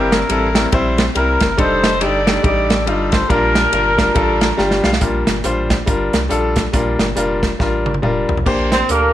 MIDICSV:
0, 0, Header, 1, 6, 480
1, 0, Start_track
1, 0, Key_signature, -2, "major"
1, 0, Tempo, 429799
1, 1769, Time_signature, 4, 2, 24, 8
1, 10198, End_track
2, 0, Start_track
2, 0, Title_t, "Horn section"
2, 0, Program_c, 0, 61
2, 0, Note_on_c, 0, 58, 69
2, 0, Note_on_c, 0, 64, 66
2, 0, Note_on_c, 0, 67, 90
2, 143, Note_off_c, 0, 64, 0
2, 152, Note_off_c, 0, 67, 0
2, 156, Note_on_c, 0, 64, 64
2, 159, Note_on_c, 0, 70, 83
2, 777, Note_off_c, 0, 58, 0
2, 821, Note_off_c, 0, 70, 0
2, 1061, Note_off_c, 0, 64, 0
2, 1306, Note_on_c, 0, 64, 58
2, 1310, Note_on_c, 0, 70, 84
2, 1744, Note_off_c, 0, 64, 0
2, 1746, Note_off_c, 0, 70, 0
2, 1776, Note_on_c, 0, 69, 72
2, 1776, Note_on_c, 0, 72, 100
2, 1777, Note_on_c, 0, 63, 76
2, 2243, Note_off_c, 0, 69, 0
2, 2251, Note_off_c, 0, 72, 0
2, 2255, Note_on_c, 0, 74, 116
2, 2257, Note_on_c, 0, 69, 85
2, 2258, Note_on_c, 0, 67, 82
2, 2685, Note_off_c, 0, 63, 0
2, 2726, Note_off_c, 0, 74, 0
2, 2732, Note_off_c, 0, 69, 0
2, 2733, Note_off_c, 0, 67, 0
2, 2740, Note_on_c, 0, 74, 93
2, 2745, Note_on_c, 0, 69, 82
2, 2746, Note_on_c, 0, 67, 69
2, 3179, Note_off_c, 0, 74, 0
2, 3490, Note_on_c, 0, 72, 102
2, 3649, Note_off_c, 0, 67, 0
2, 3649, Note_off_c, 0, 69, 0
2, 3670, Note_off_c, 0, 72, 0
2, 3685, Note_on_c, 0, 70, 112
2, 3691, Note_on_c, 0, 62, 87
2, 3693, Note_on_c, 0, 67, 85
2, 5081, Note_off_c, 0, 62, 0
2, 5082, Note_off_c, 0, 67, 0
2, 5122, Note_off_c, 0, 70, 0
2, 9756, Note_on_c, 0, 72, 90
2, 9839, Note_off_c, 0, 72, 0
2, 9937, Note_on_c, 0, 67, 71
2, 9939, Note_on_c, 0, 62, 67
2, 9943, Note_on_c, 0, 70, 99
2, 10198, Note_off_c, 0, 62, 0
2, 10198, Note_off_c, 0, 67, 0
2, 10198, Note_off_c, 0, 70, 0
2, 10198, End_track
3, 0, Start_track
3, 0, Title_t, "Grand piano"
3, 0, Program_c, 1, 0
3, 0, Note_on_c, 1, 43, 62
3, 0, Note_on_c, 1, 55, 90
3, 0, Note_on_c, 1, 60, 87
3, 0, Note_on_c, 1, 64, 86
3, 0, Note_on_c, 1, 70, 109
3, 196, Note_off_c, 1, 55, 0
3, 201, Note_off_c, 1, 60, 0
3, 204, Note_off_c, 1, 64, 0
3, 208, Note_off_c, 1, 70, 0
3, 326, Note_on_c, 1, 55, 75
3, 333, Note_on_c, 1, 60, 71
3, 339, Note_on_c, 1, 64, 64
3, 346, Note_on_c, 1, 69, 81
3, 517, Note_off_c, 1, 55, 0
3, 521, Note_off_c, 1, 60, 0
3, 524, Note_off_c, 1, 64, 0
3, 527, Note_off_c, 1, 69, 0
3, 576, Note_off_c, 1, 43, 0
3, 605, Note_on_c, 1, 55, 68
3, 613, Note_on_c, 1, 60, 59
3, 619, Note_on_c, 1, 64, 60
3, 627, Note_on_c, 1, 70, 74
3, 738, Note_off_c, 1, 55, 0
3, 743, Note_off_c, 1, 60, 0
3, 745, Note_off_c, 1, 64, 0
3, 749, Note_off_c, 1, 70, 0
3, 809, Note_on_c, 1, 55, 88
3, 816, Note_on_c, 1, 60, 80
3, 822, Note_on_c, 1, 64, 79
3, 827, Note_on_c, 1, 72, 100
3, 1156, Note_off_c, 1, 55, 0
3, 1160, Note_off_c, 1, 60, 0
3, 1163, Note_off_c, 1, 64, 0
3, 1165, Note_off_c, 1, 72, 0
3, 1285, Note_on_c, 1, 55, 72
3, 1293, Note_on_c, 1, 60, 65
3, 1299, Note_on_c, 1, 64, 67
3, 1307, Note_on_c, 1, 70, 85
3, 1633, Note_off_c, 1, 55, 0
3, 1637, Note_off_c, 1, 60, 0
3, 1641, Note_off_c, 1, 64, 0
3, 1644, Note_off_c, 1, 70, 0
3, 1759, Note_on_c, 1, 55, 91
3, 1762, Note_on_c, 1, 62, 91
3, 1770, Note_on_c, 1, 63, 88
3, 1774, Note_on_c, 1, 69, 106
3, 2110, Note_off_c, 1, 55, 0
3, 2111, Note_off_c, 1, 62, 0
3, 2115, Note_off_c, 1, 63, 0
3, 2117, Note_off_c, 1, 69, 0
3, 2246, Note_on_c, 1, 55, 74
3, 2252, Note_on_c, 1, 62, 71
3, 2259, Note_on_c, 1, 63, 71
3, 2266, Note_on_c, 1, 67, 87
3, 2434, Note_off_c, 1, 55, 0
3, 2437, Note_off_c, 1, 62, 0
3, 2441, Note_off_c, 1, 63, 0
3, 2444, Note_off_c, 1, 67, 0
3, 2528, Note_on_c, 1, 55, 70
3, 2534, Note_on_c, 1, 62, 64
3, 2542, Note_on_c, 1, 63, 62
3, 2548, Note_on_c, 1, 67, 76
3, 2657, Note_off_c, 1, 55, 0
3, 2660, Note_off_c, 1, 62, 0
3, 2664, Note_off_c, 1, 63, 0
3, 2667, Note_off_c, 1, 67, 0
3, 2716, Note_on_c, 1, 55, 79
3, 2719, Note_on_c, 1, 62, 70
3, 2731, Note_on_c, 1, 63, 73
3, 2734, Note_on_c, 1, 67, 84
3, 3067, Note_off_c, 1, 55, 0
3, 3069, Note_off_c, 1, 62, 0
3, 3075, Note_off_c, 1, 63, 0
3, 3076, Note_off_c, 1, 67, 0
3, 3195, Note_on_c, 1, 55, 78
3, 3202, Note_on_c, 1, 62, 71
3, 3209, Note_on_c, 1, 63, 69
3, 3216, Note_on_c, 1, 65, 85
3, 3546, Note_off_c, 1, 55, 0
3, 3550, Note_off_c, 1, 62, 0
3, 3553, Note_off_c, 1, 63, 0
3, 3556, Note_off_c, 1, 65, 0
3, 3676, Note_on_c, 1, 55, 94
3, 3682, Note_on_c, 1, 62, 90
3, 3685, Note_on_c, 1, 46, 64
3, 3688, Note_on_c, 1, 65, 88
3, 3696, Note_on_c, 1, 70, 102
3, 4026, Note_off_c, 1, 55, 0
3, 4029, Note_off_c, 1, 62, 0
3, 4032, Note_off_c, 1, 65, 0
3, 4036, Note_off_c, 1, 70, 0
3, 4156, Note_on_c, 1, 55, 73
3, 4161, Note_on_c, 1, 62, 64
3, 4169, Note_on_c, 1, 65, 64
3, 4173, Note_on_c, 1, 70, 83
3, 4347, Note_off_c, 1, 55, 0
3, 4349, Note_off_c, 1, 62, 0
3, 4353, Note_off_c, 1, 65, 0
3, 4355, Note_off_c, 1, 70, 0
3, 4405, Note_off_c, 1, 46, 0
3, 4438, Note_on_c, 1, 55, 81
3, 4444, Note_on_c, 1, 62, 69
3, 4449, Note_on_c, 1, 65, 71
3, 4457, Note_on_c, 1, 70, 87
3, 4570, Note_off_c, 1, 55, 0
3, 4573, Note_off_c, 1, 62, 0
3, 4575, Note_off_c, 1, 65, 0
3, 4579, Note_off_c, 1, 70, 0
3, 4629, Note_on_c, 1, 55, 91
3, 4635, Note_on_c, 1, 62, 81
3, 4643, Note_on_c, 1, 65, 84
3, 4650, Note_on_c, 1, 69, 94
3, 4982, Note_off_c, 1, 55, 0
3, 4985, Note_off_c, 1, 62, 0
3, 4989, Note_off_c, 1, 65, 0
3, 4992, Note_off_c, 1, 69, 0
3, 5108, Note_on_c, 1, 55, 93
3, 5115, Note_on_c, 1, 62, 81
3, 5118, Note_on_c, 1, 82, 70
3, 5122, Note_on_c, 1, 65, 78
3, 5130, Note_on_c, 1, 67, 98
3, 5386, Note_off_c, 1, 82, 0
3, 5411, Note_on_c, 1, 77, 72
3, 5462, Note_off_c, 1, 55, 0
3, 5465, Note_off_c, 1, 62, 0
3, 5468, Note_off_c, 1, 65, 0
3, 5472, Note_off_c, 1, 67, 0
3, 5589, Note_off_c, 1, 77, 0
3, 5594, Note_on_c, 1, 55, 81
3, 5599, Note_on_c, 1, 62, 72
3, 5607, Note_on_c, 1, 46, 71
3, 5607, Note_on_c, 1, 65, 71
3, 5612, Note_on_c, 1, 70, 84
3, 5944, Note_off_c, 1, 55, 0
3, 5947, Note_off_c, 1, 62, 0
3, 5951, Note_off_c, 1, 65, 0
3, 5954, Note_off_c, 1, 70, 0
3, 6073, Note_on_c, 1, 55, 83
3, 6079, Note_on_c, 1, 62, 75
3, 6085, Note_on_c, 1, 65, 73
3, 6093, Note_on_c, 1, 72, 89
3, 6327, Note_off_c, 1, 46, 0
3, 6424, Note_off_c, 1, 55, 0
3, 6427, Note_off_c, 1, 62, 0
3, 6430, Note_off_c, 1, 65, 0
3, 6434, Note_off_c, 1, 72, 0
3, 6547, Note_on_c, 1, 55, 85
3, 6555, Note_on_c, 1, 62, 76
3, 6559, Note_on_c, 1, 65, 75
3, 6568, Note_on_c, 1, 70, 90
3, 6902, Note_off_c, 1, 55, 0
3, 6906, Note_off_c, 1, 62, 0
3, 6908, Note_off_c, 1, 65, 0
3, 6912, Note_off_c, 1, 70, 0
3, 7027, Note_on_c, 1, 55, 79
3, 7038, Note_on_c, 1, 62, 78
3, 7043, Note_on_c, 1, 65, 76
3, 7050, Note_on_c, 1, 69, 96
3, 7382, Note_off_c, 1, 55, 0
3, 7388, Note_off_c, 1, 62, 0
3, 7390, Note_off_c, 1, 65, 0
3, 7394, Note_off_c, 1, 69, 0
3, 7513, Note_on_c, 1, 55, 80
3, 7520, Note_on_c, 1, 62, 76
3, 7524, Note_on_c, 1, 46, 72
3, 7526, Note_on_c, 1, 65, 76
3, 7532, Note_on_c, 1, 70, 93
3, 7866, Note_off_c, 1, 55, 0
3, 7870, Note_off_c, 1, 62, 0
3, 7873, Note_off_c, 1, 65, 0
3, 7876, Note_off_c, 1, 70, 0
3, 7994, Note_on_c, 1, 55, 88
3, 8001, Note_on_c, 1, 62, 81
3, 8012, Note_on_c, 1, 65, 76
3, 8017, Note_on_c, 1, 70, 93
3, 8248, Note_off_c, 1, 46, 0
3, 8347, Note_off_c, 1, 55, 0
3, 8351, Note_off_c, 1, 62, 0
3, 8356, Note_off_c, 1, 65, 0
3, 8359, Note_off_c, 1, 70, 0
3, 8479, Note_on_c, 1, 55, 77
3, 8489, Note_on_c, 1, 62, 73
3, 8492, Note_on_c, 1, 65, 75
3, 8500, Note_on_c, 1, 70, 87
3, 8831, Note_off_c, 1, 55, 0
3, 8835, Note_off_c, 1, 62, 0
3, 8837, Note_off_c, 1, 65, 0
3, 8841, Note_off_c, 1, 70, 0
3, 8960, Note_on_c, 1, 55, 83
3, 8966, Note_on_c, 1, 62, 71
3, 8973, Note_on_c, 1, 65, 73
3, 8982, Note_on_c, 1, 70, 87
3, 9312, Note_off_c, 1, 55, 0
3, 9315, Note_off_c, 1, 62, 0
3, 9319, Note_off_c, 1, 65, 0
3, 9323, Note_off_c, 1, 70, 0
3, 9444, Note_on_c, 1, 58, 101
3, 9453, Note_on_c, 1, 62, 96
3, 9456, Note_on_c, 1, 46, 70
3, 9459, Note_on_c, 1, 67, 88
3, 9465, Note_on_c, 1, 72, 111
3, 9795, Note_off_c, 1, 58, 0
3, 9800, Note_off_c, 1, 62, 0
3, 9802, Note_off_c, 1, 67, 0
3, 9805, Note_off_c, 1, 72, 0
3, 9929, Note_on_c, 1, 58, 72
3, 9936, Note_on_c, 1, 62, 60
3, 9944, Note_on_c, 1, 67, 63
3, 9948, Note_on_c, 1, 69, 73
3, 10178, Note_off_c, 1, 46, 0
3, 10198, Note_off_c, 1, 58, 0
3, 10198, Note_off_c, 1, 62, 0
3, 10198, Note_off_c, 1, 67, 0
3, 10198, Note_off_c, 1, 69, 0
3, 10198, End_track
4, 0, Start_track
4, 0, Title_t, "Tenor saxophone"
4, 0, Program_c, 2, 66
4, 9749, Note_on_c, 2, 60, 102
4, 9951, Note_on_c, 2, 58, 101
4, 9968, Note_off_c, 2, 60, 0
4, 10198, Note_off_c, 2, 58, 0
4, 10198, End_track
5, 0, Start_track
5, 0, Title_t, "Sub bass"
5, 0, Program_c, 3, 38
5, 0, Note_on_c, 3, 31, 111
5, 265, Note_off_c, 3, 31, 0
5, 335, Note_on_c, 3, 33, 94
5, 741, Note_off_c, 3, 33, 0
5, 814, Note_on_c, 3, 34, 101
5, 1220, Note_off_c, 3, 34, 0
5, 1291, Note_on_c, 3, 36, 96
5, 1534, Note_off_c, 3, 36, 0
5, 1580, Note_on_c, 3, 30, 93
5, 1742, Note_off_c, 3, 30, 0
5, 1772, Note_on_c, 3, 29, 100
5, 2258, Note_on_c, 3, 31, 103
5, 2275, Note_off_c, 3, 29, 0
5, 2660, Note_off_c, 3, 31, 0
5, 2726, Note_on_c, 3, 33, 99
5, 3213, Note_on_c, 3, 31, 101
5, 3229, Note_off_c, 3, 33, 0
5, 3616, Note_off_c, 3, 31, 0
5, 3686, Note_on_c, 3, 34, 110
5, 4092, Note_off_c, 3, 34, 0
5, 4164, Note_on_c, 3, 31, 100
5, 4571, Note_off_c, 3, 31, 0
5, 4642, Note_on_c, 3, 33, 92
5, 5050, Note_off_c, 3, 33, 0
5, 5125, Note_on_c, 3, 31, 92
5, 5368, Note_off_c, 3, 31, 0
5, 5409, Note_on_c, 3, 35, 97
5, 5573, Note_off_c, 3, 35, 0
5, 5604, Note_on_c, 3, 34, 102
5, 5847, Note_off_c, 3, 34, 0
5, 5893, Note_on_c, 3, 31, 85
5, 6055, Note_off_c, 3, 31, 0
5, 6083, Note_on_c, 3, 33, 87
5, 6491, Note_off_c, 3, 33, 0
5, 6561, Note_on_c, 3, 31, 94
5, 6806, Note_off_c, 3, 31, 0
5, 6854, Note_on_c, 3, 36, 86
5, 7017, Note_off_c, 3, 36, 0
5, 7049, Note_on_c, 3, 34, 98
5, 7455, Note_off_c, 3, 34, 0
5, 7524, Note_on_c, 3, 34, 96
5, 7769, Note_off_c, 3, 34, 0
5, 7811, Note_on_c, 3, 31, 93
5, 7976, Note_off_c, 3, 31, 0
5, 8007, Note_on_c, 3, 29, 98
5, 8415, Note_off_c, 3, 29, 0
5, 8489, Note_on_c, 3, 33, 96
5, 8777, Note_on_c, 3, 31, 86
5, 8794, Note_off_c, 3, 33, 0
5, 8941, Note_off_c, 3, 31, 0
5, 8965, Note_on_c, 3, 29, 91
5, 9211, Note_off_c, 3, 29, 0
5, 9262, Note_on_c, 3, 35, 95
5, 9424, Note_off_c, 3, 35, 0
5, 9453, Note_on_c, 3, 34, 107
5, 9861, Note_off_c, 3, 34, 0
5, 9933, Note_on_c, 3, 38, 93
5, 10198, Note_off_c, 3, 38, 0
5, 10198, End_track
6, 0, Start_track
6, 0, Title_t, "Drums"
6, 137, Note_on_c, 9, 38, 111
6, 139, Note_on_c, 9, 53, 58
6, 249, Note_off_c, 9, 38, 0
6, 251, Note_off_c, 9, 53, 0
6, 330, Note_on_c, 9, 53, 87
6, 441, Note_off_c, 9, 53, 0
6, 616, Note_on_c, 9, 38, 118
6, 619, Note_on_c, 9, 53, 60
6, 728, Note_off_c, 9, 38, 0
6, 730, Note_off_c, 9, 53, 0
6, 808, Note_on_c, 9, 53, 76
6, 813, Note_on_c, 9, 36, 114
6, 920, Note_off_c, 9, 53, 0
6, 925, Note_off_c, 9, 36, 0
6, 1097, Note_on_c, 9, 53, 58
6, 1102, Note_on_c, 9, 38, 114
6, 1208, Note_off_c, 9, 53, 0
6, 1213, Note_off_c, 9, 38, 0
6, 1288, Note_on_c, 9, 53, 72
6, 1400, Note_off_c, 9, 53, 0
6, 1567, Note_on_c, 9, 53, 64
6, 1578, Note_on_c, 9, 36, 87
6, 1579, Note_on_c, 9, 38, 104
6, 1679, Note_off_c, 9, 53, 0
6, 1690, Note_off_c, 9, 36, 0
6, 1690, Note_off_c, 9, 38, 0
6, 1769, Note_on_c, 9, 53, 81
6, 1770, Note_on_c, 9, 36, 116
6, 1881, Note_off_c, 9, 53, 0
6, 1882, Note_off_c, 9, 36, 0
6, 2051, Note_on_c, 9, 38, 110
6, 2053, Note_on_c, 9, 53, 59
6, 2162, Note_off_c, 9, 38, 0
6, 2164, Note_off_c, 9, 53, 0
6, 2244, Note_on_c, 9, 53, 89
6, 2356, Note_off_c, 9, 53, 0
6, 2537, Note_on_c, 9, 38, 108
6, 2540, Note_on_c, 9, 53, 60
6, 2649, Note_off_c, 9, 38, 0
6, 2652, Note_off_c, 9, 53, 0
6, 2726, Note_on_c, 9, 53, 74
6, 2727, Note_on_c, 9, 36, 119
6, 2838, Note_off_c, 9, 53, 0
6, 2839, Note_off_c, 9, 36, 0
6, 3016, Note_on_c, 9, 53, 55
6, 3021, Note_on_c, 9, 38, 115
6, 3128, Note_off_c, 9, 53, 0
6, 3133, Note_off_c, 9, 38, 0
6, 3207, Note_on_c, 9, 53, 69
6, 3319, Note_off_c, 9, 53, 0
6, 3483, Note_on_c, 9, 53, 63
6, 3493, Note_on_c, 9, 36, 88
6, 3494, Note_on_c, 9, 38, 100
6, 3595, Note_off_c, 9, 53, 0
6, 3605, Note_off_c, 9, 36, 0
6, 3606, Note_off_c, 9, 38, 0
6, 3686, Note_on_c, 9, 36, 107
6, 3688, Note_on_c, 9, 53, 76
6, 3798, Note_off_c, 9, 36, 0
6, 3799, Note_off_c, 9, 53, 0
6, 3969, Note_on_c, 9, 38, 113
6, 3971, Note_on_c, 9, 53, 59
6, 4080, Note_off_c, 9, 38, 0
6, 4082, Note_off_c, 9, 53, 0
6, 4161, Note_on_c, 9, 53, 85
6, 4273, Note_off_c, 9, 53, 0
6, 4451, Note_on_c, 9, 36, 91
6, 4451, Note_on_c, 9, 38, 106
6, 4453, Note_on_c, 9, 53, 57
6, 4563, Note_off_c, 9, 36, 0
6, 4563, Note_off_c, 9, 38, 0
6, 4565, Note_off_c, 9, 53, 0
6, 4640, Note_on_c, 9, 53, 79
6, 4642, Note_on_c, 9, 36, 111
6, 4751, Note_off_c, 9, 53, 0
6, 4754, Note_off_c, 9, 36, 0
6, 4927, Note_on_c, 9, 53, 56
6, 4932, Note_on_c, 9, 38, 109
6, 5038, Note_off_c, 9, 53, 0
6, 5043, Note_off_c, 9, 38, 0
6, 5120, Note_on_c, 9, 38, 58
6, 5232, Note_off_c, 9, 38, 0
6, 5261, Note_on_c, 9, 38, 67
6, 5373, Note_off_c, 9, 38, 0
6, 5403, Note_on_c, 9, 38, 94
6, 5505, Note_off_c, 9, 38, 0
6, 5505, Note_on_c, 9, 38, 94
6, 5596, Note_on_c, 9, 42, 85
6, 5601, Note_on_c, 9, 36, 99
6, 5617, Note_off_c, 9, 38, 0
6, 5707, Note_off_c, 9, 42, 0
6, 5713, Note_off_c, 9, 36, 0
6, 5885, Note_on_c, 9, 38, 108
6, 5887, Note_on_c, 9, 42, 70
6, 5997, Note_off_c, 9, 38, 0
6, 5999, Note_off_c, 9, 42, 0
6, 6075, Note_on_c, 9, 42, 96
6, 6187, Note_off_c, 9, 42, 0
6, 6368, Note_on_c, 9, 38, 104
6, 6370, Note_on_c, 9, 36, 81
6, 6371, Note_on_c, 9, 42, 68
6, 6480, Note_off_c, 9, 38, 0
6, 6482, Note_off_c, 9, 36, 0
6, 6482, Note_off_c, 9, 42, 0
6, 6559, Note_on_c, 9, 42, 89
6, 6562, Note_on_c, 9, 36, 102
6, 6671, Note_off_c, 9, 42, 0
6, 6674, Note_off_c, 9, 36, 0
6, 6850, Note_on_c, 9, 42, 65
6, 6855, Note_on_c, 9, 38, 103
6, 6962, Note_off_c, 9, 42, 0
6, 6967, Note_off_c, 9, 38, 0
6, 7042, Note_on_c, 9, 42, 78
6, 7154, Note_off_c, 9, 42, 0
6, 7323, Note_on_c, 9, 42, 68
6, 7332, Note_on_c, 9, 36, 87
6, 7334, Note_on_c, 9, 38, 101
6, 7435, Note_off_c, 9, 42, 0
6, 7443, Note_off_c, 9, 36, 0
6, 7446, Note_off_c, 9, 38, 0
6, 7522, Note_on_c, 9, 42, 91
6, 7525, Note_on_c, 9, 36, 98
6, 7633, Note_off_c, 9, 42, 0
6, 7636, Note_off_c, 9, 36, 0
6, 7811, Note_on_c, 9, 38, 104
6, 7813, Note_on_c, 9, 42, 70
6, 7923, Note_off_c, 9, 38, 0
6, 7925, Note_off_c, 9, 42, 0
6, 8003, Note_on_c, 9, 42, 99
6, 8115, Note_off_c, 9, 42, 0
6, 8296, Note_on_c, 9, 36, 78
6, 8297, Note_on_c, 9, 38, 98
6, 8299, Note_on_c, 9, 42, 65
6, 8407, Note_off_c, 9, 36, 0
6, 8409, Note_off_c, 9, 38, 0
6, 8411, Note_off_c, 9, 42, 0
6, 8487, Note_on_c, 9, 36, 103
6, 8489, Note_on_c, 9, 38, 54
6, 8599, Note_off_c, 9, 36, 0
6, 8600, Note_off_c, 9, 38, 0
6, 8777, Note_on_c, 9, 48, 63
6, 8871, Note_off_c, 9, 48, 0
6, 8871, Note_on_c, 9, 48, 59
6, 8969, Note_on_c, 9, 47, 78
6, 8983, Note_off_c, 9, 48, 0
6, 9080, Note_off_c, 9, 47, 0
6, 9258, Note_on_c, 9, 43, 92
6, 9353, Note_off_c, 9, 43, 0
6, 9353, Note_on_c, 9, 43, 84
6, 9449, Note_on_c, 9, 49, 80
6, 9452, Note_on_c, 9, 36, 102
6, 9464, Note_off_c, 9, 43, 0
6, 9561, Note_off_c, 9, 49, 0
6, 9563, Note_off_c, 9, 36, 0
6, 9737, Note_on_c, 9, 38, 103
6, 9739, Note_on_c, 9, 42, 66
6, 9849, Note_off_c, 9, 38, 0
6, 9851, Note_off_c, 9, 42, 0
6, 9929, Note_on_c, 9, 42, 99
6, 10041, Note_off_c, 9, 42, 0
6, 10198, End_track
0, 0, End_of_file